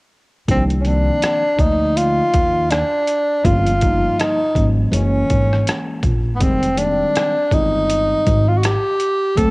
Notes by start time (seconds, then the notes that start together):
0.48 C2 D#3 F3 A#3 C4 D4, kick, closed hi-hat
0.70 closed hi-hat
0.81 D#3 C#4
0.85 F3 A#3 C4 D4, closed hi-hat
1.22 cross-stick, closed hi-hat
1.57 D2 F3 A#3 D#4 D5, kick, closed hi-hat
1.97 F4, closed hi-hat
2.34 D#2, kick, closed hi-hat
2.70 D4, cross-stick, closed hi-hat
3.07 closed hi-hat
3.44 G1 F3 G3 A#3 C#4 F4, kick, closed hi-hat
3.66 closed hi-hat
3.81 F3 G3 A#3 D#4, kick, closed hi-hat
4.19 D#4, cross-stick, closed hi-hat
4.55 G#1 F3 G3 A#3 C#4, kick, closed hi-hat
4.91 F#1 E3 G#3 A#3 C#4, closed hi-hat
5.30 G#1, kick, closed hi-hat
5.53 cross-stick
5.67 cross-stick, closed hi-hat
6.03 A#1, kick, closed hi-hat
6.35 B3
6.39 F1 D#3 G3 G#3 C4, kick, closed hi-hat
6.63 closed hi-hat
6.76 D#3 G3 G#3 A#3 D4, closed hi-hat
6.85 C4
7.15 cross-stick, closed hi-hat
7.51 G1 D#3 G3 G#3 C4 D#4, kick, closed hi-hat
7.90 closed hi-hat
8.27 G#1, kick, closed hi-hat
8.48 F4
8.58 F#4
8.63 G4, cross-stick, closed hi-hat
9.00 closed hi-hat
9.36 D2 F#3 A3 A#3 C4 A4, kick, closed hi-hat